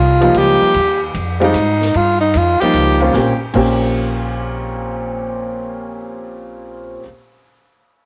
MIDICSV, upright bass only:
0, 0, Header, 1, 3, 480
1, 0, Start_track
1, 0, Tempo, 400267
1, 896, Time_signature, 3, 2, 24, 8
1, 9658, End_track
2, 0, Start_track
2, 0, Title_t, "Upright bass"
2, 0, Program_c, 0, 32
2, 0, Note_on_c, 0, 36, 86
2, 404, Note_off_c, 0, 36, 0
2, 412, Note_on_c, 0, 37, 79
2, 713, Note_off_c, 0, 37, 0
2, 894, Note_on_c, 0, 39, 82
2, 1360, Note_off_c, 0, 39, 0
2, 1372, Note_on_c, 0, 41, 81
2, 1839, Note_off_c, 0, 41, 0
2, 1848, Note_on_c, 0, 44, 83
2, 2316, Note_off_c, 0, 44, 0
2, 2338, Note_on_c, 0, 43, 81
2, 2802, Note_off_c, 0, 43, 0
2, 2818, Note_on_c, 0, 41, 86
2, 3116, Note_off_c, 0, 41, 0
2, 3287, Note_on_c, 0, 37, 77
2, 3756, Note_off_c, 0, 37, 0
2, 3766, Note_on_c, 0, 34, 81
2, 3949, Note_off_c, 0, 34, 0
2, 4253, Note_on_c, 0, 34, 81
2, 8346, Note_off_c, 0, 34, 0
2, 9658, End_track
3, 0, Start_track
3, 0, Title_t, "Muted upright bass strokes"
3, 744, Note_on_c, 9, 29, 38
3, 864, Note_off_c, 9, 29, 0
3, 3138, Note_on_c, 9, 29, 38
3, 3258, Note_off_c, 9, 29, 0
3, 9658, End_track
0, 0, End_of_file